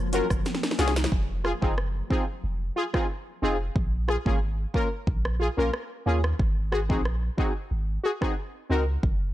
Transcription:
Already playing: F#1 F3 F#3 A#3
0.13 C#4 F4 F#4 A#4, closed hi-hat, shaker
0.30 F#1, kick, cross-stick, shaker
0.46 snare, shaker
0.55 snare
0.63 snare, shaker
0.71 snare
0.78 C2 C#4 F4 F#4 G#4, snare, closed hi-hat, shaker
0.88 snare
0.96 snare, shaker
1.04 snare
1.12 F1, kick
1.44 F4 G#4, cross-stick
1.61 F#1 C4 D#4 F4 G#4, kick
1.78 cross-stick
2.10 C4 D#4 F4 G#4, kick
2.44 F1
2.76 F4 G#4
2.93 C4 D#4 F4 G#4, kick, cross-stick
3.42 F1 C4 D#4 F4 G#4
3.76 A#1, kick
4.08 F4 G#4, cross-stick
4.25 G#1 A#3 C#4 F4 G#4, kick
4.74 A#3 C#4 F4 A#4, kick
5.07 A#1, kick
5.25 cross-stick
5.40 F4 G#4
5.57 A#1 A#3 C#4 F4 A#4
5.74 cross-stick
6.06 D#2 A#3 C#4 F4 G#4
6.24 cross-stick
6.39 G#1, kick
6.72 F#4 G#4, cross-stick
6.89 A#1 C4 D#4 F#4 G#4, kick
7.05 cross-stick
7.37 C4 D#4 F#4 G#4, kick
7.71 G#1
8.04 F#4 G#4
8.21 C4 D#4 F#4 G#4, kick, cross-stick
8.69 C#2 C4 D#4 F#4 A#4
9.03 F#1, kick

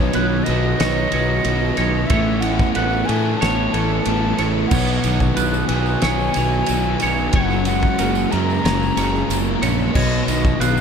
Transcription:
Already playing: B2 D#3 F#3 B3 D#4 C#5
0.13 B1 D#3 B3 B4, ride
0.44 B3 F#4 D#5, ride
0.48 B1 B2 F#3 B3
0.79 B1 D#3 C#5, snare, ride
1.12 B1 B3 F#4 C#5, ride
1.45 B1 B3 F#4, ride
1.77 B1 C#4 D#4 C#5, ride
2.07 A1 A2 A3 C#5 E5, kick, ride
2.12 E3 A3
2.41 B3 E4 F#5, ride
2.59 kick
2.73 A1 B3 B4 F#5, ride
3.05 A2 A3 E4 A4 G#5, ride
3.10 A2 E3
3.38 B3 C#5 A5
3.42 A1, snare, ride
3.70 A1 A4 C#5 A5
3.74 E4, ride
4.00 A5
4.05 A1 B3 C#5, ride
4.38 A1 E4 A4 C#5, ride
4.67 B2 F#5, crash
4.71 B1 B2 F#3 B3 C#5, kick
4.99 F#5
5.04 B1 D#3 D#4, ride, tambourine
5.20 kick, tambourine
5.37 B1 D#3 B3 B4, ride, tambourine
5.54 tambourine
5.66 B1 B3 G#5, ride
5.70 B2 F#3 B3 F#4, tambourine
5.86 tambourine
6.02 B1 D#3 C#5, snare, ride, tambourine
6.19 tambourine
6.34 B1 B3 F#4 C#5, ride, tambourine
6.53 tambourine
6.66 B1 B3 F#4, ride, tambourine
7.00 B1 C#4 D#4 C#5, ride, tambourine
7.17 tambourine
7.32 F#1 F#2 C#3 F#3 C#5 F#5, kick, ride
7.36 F#3
7.50 tambourine
7.65 G#3 C#4 F#5, ride, tambourine
7.83 kick
7.98 F#1 G#3 A#3 A#4, ride, tambourine
8.15 tambourine
8.31 F#2 C#3 F#3 C#4 G#4 A#5, ride, tambourine
8.50 tambourine
8.64 F#1 G#3 A#4 C#5, snare, ride, tambourine
8.83 tambourine
8.97 F#1 C#4 G#4 C#5, ride, tambourine
9.15 tambourine
9.29 F#1 A#3 A#4, ride, tambourine
9.47 tambourine
9.62 A#1 C#4 F#4 C#5, ride, tambourine
9.80 tambourine
9.93 B1 B2 F#3 B3 C#5 D#5, kick, crash
10.12 tambourine
10.27 B1 D#3 D#4 D#5, ride, tambourine
10.45 kick, tambourine
10.60 B1 D#3 B3 B4 F5, ride, tambourine
10.77 tambourine

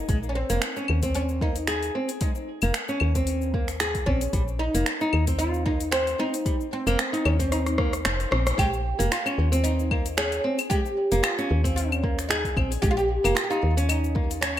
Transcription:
Already playing: D#4
0.09 A#1 G#3, kick, open hi-hat, shaker
0.23 shaker
0.29 C#4
0.35 C4
0.50 F1 A#3, open hi-hat, shaker
0.62 finger snap, open hi-hat, shaker
0.77 C#4, shaker
0.88 D#2, claves
1.03 C4, kick, open hi-hat, shaker
1.15 C#4, open hi-hat, shaker
1.29 shaker
1.41 A#3 D#4, kick
1.56 open hi-hat, shaker
1.67 G#4, finger snap, open hi-hat, shaker
1.83 open hi-hat, shaker
1.95 C4
2.09 open hi-hat, shaker
2.21 G#3, kick, open hi-hat, shaker
2.35 shaker
2.62 F1 A#3, open hi-hat, claves, shaker
2.74 finger snap, open hi-hat, shaker
2.88 C#4, shaker
3.00 D#2, claves
3.15 C4, kick, open hi-hat, shaker
3.27 open hi-hat, shaker
3.41 shaker
3.54 A#3, kick
3.68 finger snap, open hi-hat, shaker
3.80 G#4, finger snap, open hi-hat, shaker
3.95 kick, open hi-hat, shaker
4.06 A#1 C4 C#4, kick
4.21 open hi-hat, shaker
4.33 A#1 G3, kick, open hi-hat, shaker
4.48 shaker
4.59 D#4
4.75 F1 A#3, open hi-hat, shaker
4.86 finger snap, open hi-hat, shaker
5.01 D#4, shaker
5.13 D#2, claves
5.27 C4, kick, open hi-hat, shaker
5.39 F4, open hi-hat, shaker
5.54 shaker
5.66 A#3 D#4, kick
5.80 open hi-hat, shaker
5.91 C4 C5, finger snap, open hi-hat, shaker
6.07 open hi-hat, shaker
6.19 C4 D#4
6.34 open hi-hat, shaker
6.46 G3, kick, open hi-hat, shaker
6.61 shaker
6.73 C4
6.87 F1 A#3, open hi-hat, claves, shaker
6.99 finger snap, open hi-hat, shaker
7.13 D#4, open hi-hat, shaker
7.25 D#2 C#4, claves
7.39 C4, kick, open hi-hat, shaker
7.52 D#4, cross-stick, open hi-hat, shaker
7.66 cross-stick, open hi-hat, shaker
7.78 A#3, kick, cross-stick
7.93 cross-stick, open hi-hat, shaker
8.05 F1 C5, finger snap, cross-stick, open hi-hat, shaker
8.20 open hi-hat, shaker
8.31 A#1 C4, cross-stick
8.47 cross-stick, open hi-hat, shaker
8.58 A#1 G#3 G4, kick, open hi-hat, claves, shaker
8.73 shaker
8.99 F1 A#3, open hi-hat, shaker
9.12 F4, finger snap, open hi-hat, shaker
9.26 C#4, claves, shaker
9.38 D#2
9.52 C4, open hi-hat, shaker
9.64 D#4, open hi-hat, shaker
9.79 shaker
9.91 A#3, kick, claves
10.06 open hi-hat, shaker
10.17 C#4 G#4, finger snap, open hi-hat, shaker
10.32 open hi-hat, shaker
10.44 C4
10.59 open hi-hat, claves, shaker
10.70 G#3 G4, kick, open hi-hat, shaker
10.86 shaker
11.12 F1 A#3, open hi-hat, shaker
11.23 F4, finger snap, open hi-hat, claves, shaker
11.38 C#4, shaker
11.51 D#2
11.64 C4, kick, open hi-hat, shaker
11.76 C#4, open hi-hat, shaker
11.92 claves, shaker
12.03 A#3, kick
12.19 finger snap, open hi-hat, shaker
12.29 D#4 G#4, finger snap, open hi-hat, shaker
12.45 kick, open hi-hat, shaker
12.57 A#1 C4, kick, claves
12.72 open hi-hat, shaker
12.82 A#1 G#3 G4, kick, open hi-hat, shaker
12.91 F4
12.97 G4, shaker
13.24 F1 A#3, open hi-hat, claves, shaker
13.35 F4, finger snap, open hi-hat, shaker
13.44 G4
13.50 D#4 F4, shaker
13.63 D#2
13.77 C#4, open hi-hat, shaker
13.89 D#4, open hi-hat, claves, shaker
14.04 shaker
14.15 A#3, kick
14.31 open hi-hat, shaker
14.41 C#4 C#5, finger snap, open hi-hat, shaker

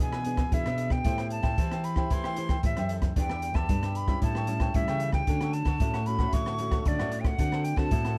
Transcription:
Already playing: B3 D4 G#4
0.00 B2 E3 G#4 B4 E5 G#5
0.12 G#4 B4 E5, cross-stick
0.24 B3 D4 G#4, muted cavaquinho stroke, closed hi-hat
0.37 G#4 B4 E5, kick, cross-stick, closed hi-hat
0.52 B2 E3 B3 D4 G#4 E5, kick, closed hi-hat
0.64 B2 G#4 B4 E5, cross-stick, closed hi-hat
0.77 D4 G#4 B4 E5, closed hi-hat
0.90 G5, kick, cross-stick
1.04 A2 A3 E4 G4 A4 C5 E5 G5, kick, closed hi-hat
1.18 C5 E5 G5, cross-stick, closed hi-hat
1.30 A5, muted cavaquinho stroke, closed hi-hat
1.43 A2 C5 E5 G5, kick, cross-stick, closed hi-hat
1.57 E3 E4 G4 A4 C5 E5 G5, kick, closed hi-hat
1.72 C5 E5 G5, cross-stick, closed hi-hat
1.84 B5, closed hi-hat
1.96 E4 G4 C5 E5 G5, kick, cross-stick
2.10 E3 A3 A4 C5 E5 G5 C6, kick, closed hi-hat
2.24 C5 E5 G5, cross-stick
2.36 E4 G4 C5, muted cavaquinho stroke, closed hi-hat
2.49 C5 E5 G5, kick, cross-stick, closed hi-hat
2.63 A2 E3 E4 G4 C5 E5, kick, closed hi-hat
2.77 F#2 C5 E5 G5, cross-stick, closed hi-hat
2.89 A4 C5 E5 G5, closed hi-hat
3.02 kick, cross-stick, closed hi-hat
3.16 E2 E3 D4 G4 B4 E5 G5, kick, closed hi-hat
3.30 G4 B4 E5, cross-stick
3.42 muted cavaquinho stroke, closed hi-hat
3.54 E2 G4 B4 E5 A5, kick, cross-stick
3.69 G2 B2 D4 G4 B4 E5, kick, closed hi-hat
3.83 G4 B4 E5, cross-stick, closed hi-hat
3.95 B5, closed hi-hat
4.08 G3 C#4 E4 G4 B4 E5, kick, cross-stick, closed hi-hat
4.22 A2 E4 A4 C#5 G5 A5, kick, closed hi-hat
4.35 A4 C#5 G5, cross-stick
4.47 G3 C#4 E4, closed hi-hat
4.60 A4 C#5 G5, kick, cross-stick, closed hi-hat
4.74 A2 E3 G3 C#4 E4 E5, kick, closed hi-hat
4.88 C#3 A4 C#5 G5, cross-stick, closed hi-hat
5.00 E4 A4 C#5 G5, closed hi-hat
5.12 G5, kick, cross-stick
5.27 D3 A3 C#4 D4 F#4 A4 C#5 F#5, kick, closed hi-hat
5.41 A4 C#5 F#5, cross-stick, closed hi-hat
5.53 A5, muted cavaquinho stroke, closed hi-hat
5.65 D3 A4 C#5 F#5, kick, cross-stick, closed hi-hat
5.80 A2 A3 C#4 D4 F#4 A4 C#5 F#5, kick, closed hi-hat
5.94 A4 C#5 F#5, cross-stick, closed hi-hat
6.06 A3 C#4 F#4 B5, closed hi-hat
6.19 A3 C#4 F#4 A4 C#5 F#5, kick, cross-stick
6.33 A2 D3 D4 A4 C#5 F#5 C#6, kick, closed hi-hat
6.46 A4 C#5 F#5, cross-stick
6.58 A3 C#4 F#4, muted cavaquinho stroke, closed hi-hat
6.71 A4 C#5 F#5, kick, cross-stick, closed hi-hat
6.85 A2 D3 A3 C#4 F#4 D5, kick, closed hi-hat
6.99 A2 A3 C#4 F#4 A4 C#5 F#5, cross-stick, closed hi-hat
7.11 D4 A4 C#5 F#5, closed hi-hat
7.20 G5
7.24 F#5, kick, cross-stick, closed hi-hat
7.39 D3 A3 C4 D4 F#4 A4 C5 F#5, kick, closed hi-hat
7.52 A4 C5 F#5, cross-stick
7.64 G5, muted cavaquinho stroke, closed hi-hat
7.76 D3 A3 C4 F#4 A4 C5 F#5 A5, kick, cross-stick
7.91 A2 D4 A4 C5 F#5, kick, closed hi-hat
8.05 A4 C5 F#5, cross-stick, closed hi-hat

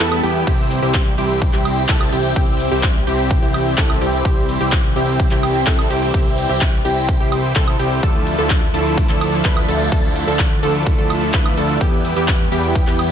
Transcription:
Already playing: E3 G3 A3 G4
0.00 E2 B3 E4 A4, cabasa
0.12 closed hi-hat, cabasa, high woodblock
0.23 E2 B3 E4 G4, open hi-hat, cabasa
0.35 closed hi-hat, cabasa
0.47 C2 E3 C4 E4 G4, kick, closed hi-hat, ride, crash, cabasa
0.59 cabasa
0.71 open hi-hat, ride, cabasa
0.82 C2 C4 E4 G4, closed hi-hat, cabasa
0.94 kick, clap, closed hi-hat, ride, cabasa
1.18 C2 C4 E4 G4, open hi-hat, ride, cabasa
1.30 open hi-hat, cabasa
1.42 kick, closed hi-hat, ride, cabasa
1.53 C2 C4 E4 G4, clap, cabasa
1.65 open hi-hat, ride, cabasa, high woodblock
1.77 closed hi-hat, cabasa
1.89 C2 C4 E4 A4, kick, clap, closed hi-hat, ride, cabasa
2.01 cabasa, high woodblock
2.12 C2 C4 E4 G4, open hi-hat, ride, cabasa
2.24 closed hi-hat, cabasa
2.36 C2 C4 E4 G4, kick, closed hi-hat, ride, cabasa
2.48 open hi-hat, cabasa
2.60 open hi-hat, ride, cabasa
2.72 C2 C4 E4 G4, closed hi-hat, cabasa
2.83 kick, clap, closed hi-hat, ride, cabasa
3.07 C2 C4 E4 G4, open hi-hat, ride, cabasa
3.19 closed hi-hat, cabasa
3.31 kick, closed hi-hat, ride, cabasa
3.42 C2 C4 E4 G4, cabasa
3.54 open hi-hat, ride, cabasa, high woodblock
3.66 closed hi-hat, cabasa
3.78 C2 C4 E4 A4, kick, clap, closed hi-hat, ride, cabasa
3.90 cabasa, high woodblock
4.01 C2 C4 E4 G4, open hi-hat, ride, cabasa
4.13 closed hi-hat, cabasa
4.25 C2 C4 E4 G4, kick, closed hi-hat, ride, cabasa
4.37 cabasa
4.49 open hi-hat, ride, cabasa
4.61 C2 C4 E4 G4, closed hi-hat, cabasa
4.72 kick, clap, closed hi-hat, ride, cabasa
4.96 C2 C4 E4 G4, open hi-hat, ride, cabasa
5.08 open hi-hat, cabasa
5.20 kick, closed hi-hat, ride, cabasa
5.31 C2 C4 E4 G4, clap, cabasa
5.43 open hi-hat, ride, cabasa, high woodblock
5.55 closed hi-hat, cabasa
5.67 C2 C4 E4 A4, kick, clap, closed hi-hat, ride, cabasa
5.79 cabasa, high woodblock
5.90 C2 C4 E4 G4, open hi-hat, ride, cabasa
6.02 closed hi-hat, cabasa
6.14 C2 C4 E4 G4, kick, closed hi-hat, ride, cabasa
6.26 open hi-hat, cabasa
6.38 open hi-hat, ride, cabasa
6.49 C2 C4 E4 G4, closed hi-hat, cabasa
6.61 kick, clap, closed hi-hat, ride, cabasa
6.73 cabasa
6.85 C2 C4 E4 G4, open hi-hat, ride, cabasa
6.97 closed hi-hat, cabasa
7.08 kick, closed hi-hat, ride, cabasa
7.20 C2 C4 E4 G4, cabasa
7.32 open hi-hat, ride, cabasa, high woodblock
7.44 closed hi-hat, cabasa
7.56 C2 C4 E4 A4, kick, clap, closed hi-hat, ride, cabasa
7.68 closed hi-hat, cabasa, high woodblock
7.79 C2 C4 E4 G4, open hi-hat, ride, cabasa
7.91 closed hi-hat, cabasa
8.03 D2 D3 F3 A3 D4 E4 A4, kick, closed hi-hat, ride, cabasa
8.15 cabasa
8.27 open hi-hat, ride, cabasa
8.38 D2 F3 A3 D4 E4 A4, closed hi-hat, cabasa
8.50 kick, clap, closed hi-hat, ride, cabasa
8.74 D2 F3 A3 D4 E4 A4, open hi-hat, ride, cabasa
8.86 open hi-hat, cabasa
8.97 kick, closed hi-hat, ride, cabasa
9.09 D2 F3 A3 D4 E4 A4, clap, cabasa
9.21 open hi-hat, ride, cabasa, high woodblock
9.33 closed hi-hat, cabasa
9.45 D2 F3 A3 D4 E4 B4, kick, clap, closed hi-hat, ride, cabasa
9.57 cabasa, high woodblock
9.68 D2 F3 A3 D4 E4 A4, open hi-hat, ride, cabasa
9.80 closed hi-hat, cabasa
9.92 D2 F3 A3 D4 E4 A4, kick, closed hi-hat, ride, cabasa
10.04 open hi-hat, cabasa
10.16 open hi-hat, ride, cabasa
10.27 D2 F3 A3 D4 E4 A4, closed hi-hat, cabasa
10.39 kick, clap, closed hi-hat, ride, cabasa
10.63 D2 F3 A3 D4 E4 A4, open hi-hat, ride, cabasa
10.75 closed hi-hat, cabasa
10.87 kick, closed hi-hat, ride, cabasa
10.98 D2 F3 A3 D4 E4 A4, cabasa
11.10 open hi-hat, ride, cabasa, high woodblock
11.22 closed hi-hat, cabasa
11.34 D2 F3 A3 D4 E4 B4, kick, clap, closed hi-hat, ride, cabasa
11.46 cabasa, high woodblock
11.57 D2 F3 A3 D4 E4 A4, open hi-hat, ride, cabasa
11.69 closed hi-hat, cabasa
11.81 E2 E3 G3 B3 E4 G4, kick, closed hi-hat, ride, cabasa
11.93 cabasa
12.05 open hi-hat, ride, cabasa
12.16 E2 B3 E4 G4, closed hi-hat, cabasa
12.28 kick, clap, closed hi-hat, ride, cabasa
12.52 E2 B3 E4 G4, open hi-hat, ride, cabasa
12.64 open hi-hat, cabasa
12.75 kick, closed hi-hat, ride, cabasa
12.87 E2 B3 E4 G4, clap, cabasa
12.99 open hi-hat, ride, cabasa, high woodblock

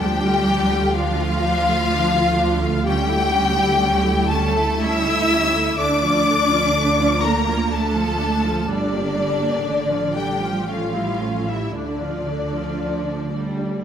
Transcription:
0.00 D2 F3 G3 D4 G4 G5
0.25 A3 F4
0.49 F3 D4
0.73 A3 F4
0.94 F3 D4 F4 F5
1.18 A3 F4
1.43 F3 D4
1.68 A3 F4
1.90 F3 D4
2.14 A3 F4
2.38 F3 D4
2.61 A3 F4
2.86 G3 C#4 G4 G5
3.09 A3 E4
3.31 G3 C#4
3.55 A3 E4
3.80 G3 C#4
4.04 A3 E4
4.30 G3 A3 C#4 A4 A5
4.56 A3 E4
4.81 G3 C#4 E4 E5 E6
5.07 A3 E4
5.32 G3 C#4
5.56 A3 E4
5.78 D2 D3 D4 D5 D6
6.04 F3 F4
6.28 D3 D4
6.52 F3 F4
6.75 D3 D4
7.00 F3 F4
7.23 D3 A#3 D4 A#4 A#5
7.48 F3 F4
7.72 D3 A3 D4 A4 A5
7.97 F3 F4
8.20 D3 D4
8.44 F3 F4
8.67 G1 D3 G3 D4 D5
8.93 A#3 G4
9.16 G3 D4
9.40 A#3 G4
9.65 A1 D3 D4
9.89 F3 F4
10.15 D3 G3 D4 G4 G5
10.42 F3 F4
10.68 F3 A3 C#4 F4 F5
10.95 G3 E4
11.21 A3 C#4
11.48 E3 G3 E4 E5
11.75 D2 D3 D4 D5
12.02 F3 F4
12.29 D3 D4
12.56 F3 F4
12.82 F3
13.36 G3

